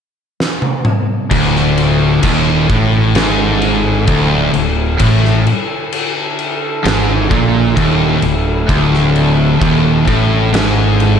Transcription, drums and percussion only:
0.40 snare medium
0.62 high tom medium
0.85 mid tom loud
1.31 kick loud
1.31 crash loud
1.55 snare soft
1.78 crash medium
2.23 kick loud
2.23 crash loud
2.69 kick loud
2.69 crash medium
3.15 snare loud
3.15 crash medium
3.62 crash medium
4.07 kick loud
4.07 crash medium
4.54 crash medium
4.99 kick loud
4.99 crash loud
5.25 snare soft
5.47 crash medium
5.92 crash medium
6.39 crash medium
6.85 snare loud
6.85 crash medium
7.31 kick loud
7.31 crash medium
7.77 kick loud
7.77 crash medium
8.22 crash medium
8.69 kick loud
8.69 crash medium
8.94 snare soft
9.16 crash medium
9.62 kick loud
9.62 crash medium
10.08 kick loud
10.08 crash medium
10.54 snare loud
10.54 crash loud
11.00 crash medium

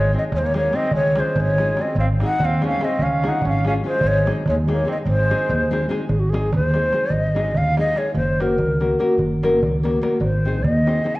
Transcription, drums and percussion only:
0.32 darbuka dum loud
0.54 darbuka tek medium
0.73 darbuka tek medium
0.91 darbuka dum loud
1.04 darbuka tek soft
1.16 darbuka tek medium
1.36 darbuka dum loud
1.47 darbuka tek soft
1.58 darbuka tek medium
1.68 darbuka tek soft
1.77 darbuka tek medium
1.95 darbuka dum medium
2.20 darbuka tek medium
2.40 darbuka dum loud
2.62 darbuka tek medium
2.81 darbuka tek medium
2.99 darbuka dum medium
3.24 darbuka tek medium
3.42 darbuka dum loud
3.65 darbuka tek medium
4.01 darbuka dum loud
4.27 darbuka tek medium
4.46 darbuka dum loud
4.69 darbuka tek medium
4.88 darbuka tek medium
5.05 darbuka dum medium
5.31 darbuka tek medium
5.49 darbuka dum medium
5.62 darbuka tek soft
5.73 darbuka tek medium
5.82 darbuka tek soft
5.91 darbuka tek medium
6.09 darbuka dum loud
6.34 darbuka tek medium
6.43 darbuka tek soft
6.53 darbuka dum loud
6.64 darbuka tek soft
6.74 darbuka tek medium
6.93 darbuka tek medium
7.02 darbuka tek soft
7.10 darbuka dum medium
7.36 darbuka tek medium
7.46 darbuka tek soft
7.54 darbuka dum medium
7.66 darbuka tek soft
7.77 darbuka tek medium
7.96 darbuka tek medium
8.06 darbuka tek soft
8.14 darbuka dum medium
8.40 darbuka tek medium
8.50 darbuka tek soft
8.59 darbuka dum medium
8.70 darbuka tek soft
8.81 darbuka tek medium
9.00 darbuka tek medium
9.10 darbuka tek soft
9.19 darbuka dum medium
9.32 darbuka tek soft
9.44 darbuka tek medium
9.54 darbuka tek soft
9.63 darbuka dum loud
9.85 darbuka tek medium
9.95 darbuka tek soft
10.03 darbuka tek medium
10.12 darbuka tek soft
10.21 darbuka dum loud
10.55 darbuka tek soft
10.65 darbuka dum loud
10.77 darbuka tek soft
10.87 darbuka tek medium
11.06 darbuka tek medium
11.15 darbuka tek soft

